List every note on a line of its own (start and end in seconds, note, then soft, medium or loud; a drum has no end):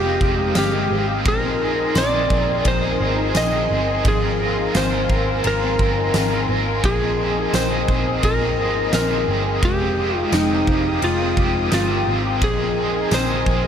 0.00 0.17 F1 loud
0.00 0.21 F2 medium
0.00 0.21 C3 medium
0.00 0.21 D#3 medium
0.00 0.21 G#3 medium
0.00 1.23 G#3 medium
0.00 1.25 G#3 medium
0.00 0.20 C4 medium
0.00 0.55 C4 medium
0.00 0.38 D#4 medium
0.00 0.18 G4 medium
0.00 0.20 G4 medium
0.00 0.57 G4 loud
0.00 1.22 F5 medium
0.00 1.22 G5 medium
0.00 1.22 D#6 medium
0.00 1.57 G6 medium
0.09 1.76 A#6 medium
0.20 0.52 F1 loud
0.20 0.53 D#3 soft
0.20 0.55 G#3 soft
0.20 0.56 C4 soft
0.20 0.55 G4 medium
0.20 0.72 G4 medium
0.20 kick medium
0.38 1.78 D#4 medium
0.55 0.86 G1 medium
0.55 0.90 D#3 medium
0.55 0.91 G#3 medium
0.55 0.90 C4 medium
0.55 0.89 C4 medium
0.55 0.88 G4 medium
0.55 1.06 G4 medium
0.55 1.57 F6 medium
0.55 snare loud
0.55 ride medium
0.55 tambourine medium
0.73 1.07 G4 medium
0.89 1.26 G#1 medium
0.89 1.24 D#3 soft
0.89 1.25 G#3 soft
0.89 1.26 C4 medium
0.89 1.43 C4 medium
0.89 1.25 G4 medium
1.08 1.33 G4 medium
1.25 1.87 A#1 loud
1.25 1.60 A#2 medium
1.25 1.60 D#3 medium
1.25 2.66 F3 medium
1.25 1.61 G#3 loud
1.25 1.60 C4 loud
1.25 4.02 D#4 medium
1.25 1.58 G#4 loud
1.25 4.02 A#4 medium
1.25 1.99 A#4 loud
1.25 9.59 G#5 medium
1.25 9.59 C6 medium
1.25 kick loud
1.25 ride medium
1.43 1.96 C4 medium
1.59 1.94 G#3 soft
1.59 1.95 C4 medium
1.59 1.95 G#4 medium
1.59 2.13 G#4 medium
1.79 3.18 D#4 medium
1.94 2.26 A#1 loud
1.94 2.30 D#3 medium
1.94 2.30 G#3 medium
1.94 2.31 C4 medium
1.94 2.30 C4 medium
1.94 2.28 G#4 medium
1.94 2.69 D5 loud
1.94 3.66 C6 medium
1.94 snare loud
1.94 ride medium
1.94 tambourine medium
2.14 2.48 G#4 medium
2.29 2.61 A#1 loud
2.29 2.65 G#3 soft
2.29 2.83 C4 medium
2.29 2.66 C4 medium
2.29 2.65 G#4 medium
2.29 kick medium
2.49 3.00 G#4 medium
2.65 2.96 A#1 loud
2.65 3.00 A#2 medium
2.65 3.00 D#3 medium
2.65 4.05 F3 medium
2.65 3.01 G#3 medium
2.65 3.00 C4 loud
2.65 2.98 G#4 loud
2.65 3.38 C5 loud
2.65 kick loud
2.65 ride medium
2.83 3.35 C4 medium
2.99 3.31 G#1 loud
2.99 3.34 G#3 soft
2.99 3.35 C4 medium
2.99 3.35 G#4 medium
2.99 3.53 G#4 medium
3.18 4.57 D#4 medium
3.34 3.66 A#1 medium
3.34 3.69 D#3 medium
3.34 3.70 G#3 medium
3.34 3.70 C4 medium
3.34 3.69 C4 medium
3.34 3.67 G#4 medium
3.34 4.08 D#5 loud
3.34 snare loud
3.34 ride medium
3.34 tambourine medium
3.53 3.88 G#4 medium
3.69 4.01 G1 medium
3.69 4.03 G#3 soft
3.69 4.22 C4 medium
3.69 4.04 C4 medium
3.69 4.04 G#4 medium
3.88 4.40 G#4 medium
4.04 4.66 G#1 loud
4.04 5.44 F3 medium
4.04 4.39 G#3 loud
4.04 4.40 C4 medium
4.04 4.40 F4 medium
4.04 4.78 G#4 loud
4.04 9.59 A#4 medium
4.04 4.38 A#4 loud
4.04 6.81 F5 medium
4.04 kick loud
4.04 ride medium
4.23 4.74 C4 medium
4.39 4.74 C4 soft
4.39 4.75 F4 medium
4.39 4.74 A#4 medium
4.39 4.92 A#4 medium
4.58 5.96 D#4 medium
4.74 5.06 G#1 loud
4.74 5.09 G#3 medium
4.74 5.09 C4 medium
4.74 5.10 C4 medium
4.74 5.09 F4 medium
4.74 5.08 A#4 medium
4.74 5.47 C5 loud
4.74 snare loud
4.74 ride medium
4.74 tambourine medium
4.93 5.27 A#4 medium
5.09 5.40 G#1 medium
5.09 5.61 C4 medium
5.09 5.43 C4 soft
5.09 5.44 F4 medium
5.09 5.44 A#4 soft
5.09 kick medium
5.27 5.79 A#4 medium
5.44 5.75 G#1 loud
5.44 6.83 F3 medium
5.44 5.79 G#3 medium
5.44 5.79 C4 medium
5.44 5.79 F4 medium
5.44 5.77 A#4 medium
5.44 6.46 A#4 medium
5.44 7.15 A#5 medium
5.44 ride medium
5.62 6.14 C4 medium
5.78 6.10 G1 loud
5.78 6.13 C4 soft
5.78 6.14 F4 medium
5.78 6.14 A#4 medium
5.78 6.31 A#4 medium
5.78 kick medium
5.97 7.36 D#4 medium
6.13 6.45 G#1 medium
6.13 6.48 G#3 medium
6.13 6.49 C4 medium
6.13 6.48 F4 medium
6.13 6.46 A#4 medium
6.13 snare loud
6.13 ride medium
6.13 tambourine medium
6.32 6.66 A#4 medium
6.48 6.80 G#1 medium
6.48 7.01 C4 medium
6.48 6.83 C4 medium
6.48 6.84 F4 medium
6.48 6.83 A#4 medium
6.66 7.04 A#4 medium
6.82 7.45 A#1 loud
6.82 7.18 A#2 medium
6.82 7.18 D#3 medium
6.82 8.23 F3 medium
6.82 7.19 A#3 medium
6.82 7.18 C4 medium
6.82 7.16 G#4 loud
6.82 7.56 G#4 loud
6.82 9.60 D#5 medium
6.82 kick loud
6.82 ride medium
7.01 7.53 C4 medium
7.18 7.53 A#3 soft
7.18 7.54 C4 medium
7.18 7.53 G#4 medium
7.18 7.71 G#4 medium
7.36 8.76 D#4 medium
7.52 7.84 A#1 loud
7.52 7.88 D#3 medium
7.52 7.89 A#3 medium
7.52 7.88 C4 medium
7.52 7.86 G#4 medium
7.52 8.24 C5 loud
7.52 snare loud
7.52 ride medium
7.52 tambourine medium
7.71 8.05 G#4 medium
7.87 8.19 A#1 medium
7.87 8.23 A#3 soft
7.87 8.41 C4 medium
7.87 8.23 C4 medium
7.87 8.23 G#4 medium
7.87 kick loud
8.06 8.58 G#4 medium
8.23 8.59 A#1 medium
8.23 8.58 A#2 medium
8.23 8.58 D#3 medium
8.23 9.63 F3 medium
8.23 8.58 A#3 medium
8.23 8.58 C4 medium
8.23 8.56 G#4 medium
8.23 8.93 A#4 loud
8.23 kick loud
8.23 ride medium
8.41 8.93 C4 medium
8.57 8.89 G#1 medium
8.57 8.92 A#3 soft
8.57 8.93 C4 medium
8.57 8.92 G#4 medium
8.57 9.10 G#4 medium
8.76 10.15 D#4 medium
8.92 9.24 A#1 medium
8.92 9.27 D#3 medium
8.92 9.28 A#3 medium
8.92 9.28 C4 medium
8.92 9.25 G#4 medium
8.92 9.43 A#4 loud
8.92 snare loud
8.92 ride medium
8.92 tambourine medium
9.11 9.45 G#4 medium
9.27 9.59 G1 medium
9.27 9.63 A#3 soft
9.27 9.80 C4 medium
9.27 9.62 C4 medium
9.27 9.62 G#4 soft
9.45 9.97 G#4 medium
9.62 10.24 F1 loud
9.62 9.97 F2 medium
9.62 9.98 C3 medium
9.62 9.98 D#3 medium
9.62 12.39 G#3 medium
9.62 11.03 G#3 medium
9.62 9.98 G#3 loud
9.62 9.97 C4 medium
9.62 9.95 G4 loud
9.62 10.18 G4 loud
9.62 12.39 F5 medium
9.62 12.39 G5 medium
9.62 12.39 D#6 medium
9.62 kick loud
9.62 ride medium
9.80 10.33 C4 medium
9.97 10.30 D#3 soft
9.97 10.31 G#3 soft
9.97 10.32 C4 medium
9.97 10.32 G4 medium
9.97 10.49 G4 medium
10.15 11.55 D#4 medium
10.15 10.36 F4 loud
10.31 10.63 F1 loud
10.31 10.67 D#3 medium
10.31 10.67 G#3 medium
10.31 10.68 C4 medium
10.31 10.66 C4 medium
10.31 11.04 D#4 medium
10.31 10.65 G4 medium
10.31 12.03 G5 medium
10.31 snare loud
10.31 ride medium
10.31 tambourine medium
10.51 10.84 G4 medium
10.51 12.23 A#5 medium
10.66 10.98 F1 loud
10.66 11.01 D#3 soft
10.66 11.02 G#3 soft
10.66 11.02 C4 medium
10.66 11.20 C4 medium
10.66 11.02 G4 medium
10.66 kick medium
10.86 11.37 G4 medium
11.01 11.33 F1 loud
11.01 11.37 F2 medium
11.01 11.37 C3 medium
11.01 11.37 D#3 medium
11.01 11.37 G#3 medium
11.01 12.42 G#3 medium
11.01 11.36 C4 medium
11.01 11.73 F4 loud
11.01 11.35 G4 medium
11.01 ride medium
11.20 11.72 C4 medium
11.36 11.68 F1 loud
11.36 11.70 D#3 soft
11.36 11.71 G#3 medium
11.36 11.72 C4 medium
11.36 11.72 G4 medium
11.36 11.89 G4 medium
11.36 kick medium
11.55 12.94 D#4 medium
11.71 12.03 G1 medium
11.71 12.06 D#3 medium
11.71 12.07 G#3 medium
11.71 12.07 C4 medium
11.71 12.06 C4 medium
11.71 12.22 F4 medium
11.71 12.05 G4 medium
11.71 snare loud
11.71 ride medium
11.71 tambourine medium
11.90 12.24 G4 medium
12.06 12.42 G#1 medium
12.06 12.40 D#3 soft
12.06 12.41 G#3 soft
12.06 12.59 C4 medium
12.06 12.41 C4 medium
12.06 12.41 G4 medium
12.25 12.49 G4 medium
12.41 13.03 A#1 loud
12.41 12.76 A#2 medium
12.41 12.77 D#3 medium
12.41 13.67 F3 medium
12.41 12.77 G#3 medium
12.41 12.76 C4 loud
12.41 12.74 G#4 medium
12.41 13.15 G#4 loud
12.41 13.67 A#4 medium
12.41 13.67 D#5 medium
12.41 13.67 G#5 medium
12.41 13.67 C6 medium
12.41 kick loud
12.41 ride medium
12.60 13.12 C4 medium
12.76 13.10 G#3 soft
12.76 13.11 C4 medium
12.76 13.11 G#4 medium
12.76 13.29 G#4 medium
12.95 13.67 D#4 medium
13.10 13.42 A#1 loud
13.10 13.46 D#3 medium
13.10 13.47 G#3 medium
13.10 13.47 C4 medium
13.10 13.46 C4 medium
13.10 13.44 G#4 medium
13.10 snare loud
13.10 ride medium
13.10 tambourine medium
13.14 13.67 C5 loud
13.29 13.64 G#4 medium
13.45 13.67 A#1 medium
13.45 13.67 G#3 soft
13.45 13.67 C4 medium
13.45 13.67 G#4 medium
13.45 kick medium